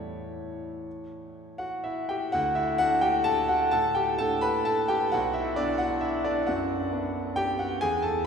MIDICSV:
0, 0, Header, 1, 2, 480
1, 0, Start_track
1, 0, Key_signature, 2, "major"
1, 0, Tempo, 506329
1, 811, Time_signature, 3, 2, 24, 8
1, 2228, Tempo, 462963
1, 5108, Tempo, 448766
1, 8462, End_track
2, 0, Start_track
2, 0, Title_t, "Grand piano"
2, 0, Program_c, 0, 0
2, 0, Control_c, 0, 64, 127
2, 0, Note_on_c, 0, 45, 50
2, 0, Note_on_c, 0, 52, 37
2, 0, Note_on_c, 0, 57, 39
2, 0, Note_on_c, 0, 64, 37
2, 0, Note_on_c, 0, 73, 78
2, 832, Control_c, 0, 64, 0
2, 966, Control_c, 0, 64, 127
2, 1501, Note_on_c, 0, 78, 85
2, 1513, Note_on_c, 0, 66, 67
2, 1741, Note_off_c, 0, 64, 0
2, 1741, Note_on_c, 0, 76, 74
2, 1744, Note_off_c, 0, 66, 0
2, 1755, Note_off_c, 0, 78, 0
2, 1755, Note_on_c, 0, 64, 55
2, 1979, Note_on_c, 0, 79, 82
2, 1980, Note_off_c, 0, 64, 0
2, 1990, Note_off_c, 0, 73, 0
2, 1990, Note_off_c, 0, 76, 0
2, 1996, Note_on_c, 0, 67, 66
2, 2162, Note_off_c, 0, 45, 0
2, 2169, Note_off_c, 0, 52, 0
2, 2176, Note_off_c, 0, 57, 0
2, 2201, Note_on_c, 0, 78, 102
2, 2209, Note_off_c, 0, 67, 0
2, 2210, Note_on_c, 0, 66, 86
2, 2216, Note_off_c, 0, 79, 0
2, 2220, Note_on_c, 0, 38, 68
2, 2250, Control_c, 0, 64, 0
2, 2393, Control_c, 0, 64, 127
2, 2437, Note_on_c, 0, 76, 90
2, 2439, Note_off_c, 0, 66, 0
2, 2449, Note_on_c, 0, 64, 68
2, 2451, Note_off_c, 0, 78, 0
2, 2678, Note_on_c, 0, 78, 123
2, 2679, Note_off_c, 0, 64, 0
2, 2686, Note_off_c, 0, 38, 0
2, 2688, Note_on_c, 0, 66, 96
2, 2691, Note_off_c, 0, 76, 0
2, 2695, Note_on_c, 0, 57, 54
2, 2701, Note_on_c, 0, 62, 60
2, 2915, Note_on_c, 0, 79, 102
2, 2916, Note_off_c, 0, 66, 0
2, 2928, Note_off_c, 0, 78, 0
2, 2929, Note_on_c, 0, 67, 76
2, 3151, Note_on_c, 0, 81, 116
2, 3155, Note_off_c, 0, 67, 0
2, 3163, Note_on_c, 0, 69, 78
2, 3165, Note_off_c, 0, 79, 0
2, 3393, Note_off_c, 0, 69, 0
2, 3401, Note_on_c, 0, 78, 93
2, 3404, Note_off_c, 0, 81, 0
2, 3411, Note_on_c, 0, 66, 87
2, 3613, Note_off_c, 0, 57, 0
2, 3616, Note_off_c, 0, 62, 0
2, 3639, Note_off_c, 0, 66, 0
2, 3641, Note_on_c, 0, 81, 110
2, 3651, Note_off_c, 0, 78, 0
2, 3657, Note_on_c, 0, 69, 88
2, 3664, Note_on_c, 0, 45, 67
2, 3680, Control_c, 0, 64, 0
2, 3871, Control_c, 0, 64, 127
2, 3882, Note_off_c, 0, 69, 0
2, 3884, Note_on_c, 0, 79, 92
2, 3891, Note_off_c, 0, 81, 0
2, 3900, Note_on_c, 0, 67, 69
2, 4124, Note_off_c, 0, 67, 0
2, 4129, Note_off_c, 0, 45, 0
2, 4130, Note_on_c, 0, 81, 111
2, 4133, Note_off_c, 0, 79, 0
2, 4142, Note_on_c, 0, 69, 88
2, 4148, Note_on_c, 0, 57, 56
2, 4151, Note_on_c, 0, 62, 57
2, 4367, Note_on_c, 0, 83, 108
2, 4368, Note_off_c, 0, 69, 0
2, 4378, Note_off_c, 0, 81, 0
2, 4379, Note_on_c, 0, 71, 87
2, 4612, Note_off_c, 0, 71, 0
2, 4614, Note_on_c, 0, 81, 100
2, 4624, Note_off_c, 0, 83, 0
2, 4627, Note_on_c, 0, 69, 79
2, 4855, Note_on_c, 0, 79, 98
2, 4856, Note_off_c, 0, 69, 0
2, 4867, Note_off_c, 0, 81, 0
2, 4868, Note_on_c, 0, 67, 81
2, 5071, Note_off_c, 0, 57, 0
2, 5072, Note_off_c, 0, 62, 0
2, 5088, Note_off_c, 0, 67, 0
2, 5096, Note_on_c, 0, 78, 102
2, 5098, Note_off_c, 0, 79, 0
2, 5113, Note_on_c, 0, 66, 93
2, 5118, Note_on_c, 0, 35, 67
2, 5129, Control_c, 0, 64, 0
2, 5306, Control_c, 0, 64, 127
2, 5329, Note_on_c, 0, 76, 87
2, 5333, Note_off_c, 0, 66, 0
2, 5341, Note_off_c, 0, 78, 0
2, 5344, Note_on_c, 0, 64, 61
2, 5569, Note_off_c, 0, 64, 0
2, 5573, Note_on_c, 0, 74, 102
2, 5578, Note_off_c, 0, 35, 0
2, 5579, Note_off_c, 0, 76, 0
2, 5584, Note_on_c, 0, 62, 81
2, 5595, Note_on_c, 0, 59, 55
2, 5807, Note_on_c, 0, 78, 102
2, 5810, Note_off_c, 0, 62, 0
2, 5821, Note_off_c, 0, 74, 0
2, 5823, Note_on_c, 0, 66, 81
2, 6049, Note_on_c, 0, 76, 90
2, 6055, Note_off_c, 0, 66, 0
2, 6065, Note_off_c, 0, 78, 0
2, 6065, Note_on_c, 0, 64, 71
2, 6299, Note_off_c, 0, 64, 0
2, 6302, Note_on_c, 0, 74, 93
2, 6309, Note_off_c, 0, 76, 0
2, 6318, Note_on_c, 0, 62, 73
2, 6519, Note_off_c, 0, 59, 0
2, 6539, Note_off_c, 0, 62, 0
2, 6540, Note_on_c, 0, 78, 96
2, 6548, Note_off_c, 0, 74, 0
2, 6550, Note_on_c, 0, 66, 72
2, 6559, Note_on_c, 0, 42, 66
2, 6578, Control_c, 0, 64, 0
2, 6722, Control_c, 0, 64, 127
2, 7024, Note_off_c, 0, 42, 0
2, 7031, Note_on_c, 0, 59, 58
2, 7034, Note_on_c, 0, 62, 65
2, 7235, Note_off_c, 0, 66, 0
2, 7273, Note_off_c, 0, 78, 0
2, 7494, Note_on_c, 0, 79, 110
2, 7507, Note_on_c, 0, 67, 83
2, 7740, Note_on_c, 0, 78, 87
2, 7741, Note_off_c, 0, 67, 0
2, 7750, Note_on_c, 0, 66, 63
2, 7753, Note_off_c, 0, 79, 0
2, 7956, Note_off_c, 0, 59, 0
2, 7958, Note_off_c, 0, 62, 0
2, 7976, Note_off_c, 0, 66, 0
2, 7976, Note_on_c, 0, 80, 117
2, 7988, Note_off_c, 0, 78, 0
2, 7990, Note_on_c, 0, 68, 84
2, 8001, Note_on_c, 0, 40, 69
2, 8021, Control_c, 0, 64, 0
2, 8193, Control_c, 0, 64, 127
2, 8205, Note_on_c, 0, 81, 85
2, 8210, Note_off_c, 0, 68, 0
2, 8220, Note_off_c, 0, 80, 0
2, 8221, Note_on_c, 0, 69, 73
2, 8446, Note_off_c, 0, 69, 0
2, 8454, Note_off_c, 0, 40, 0
2, 8455, Note_off_c, 0, 81, 0
2, 8462, End_track
0, 0, End_of_file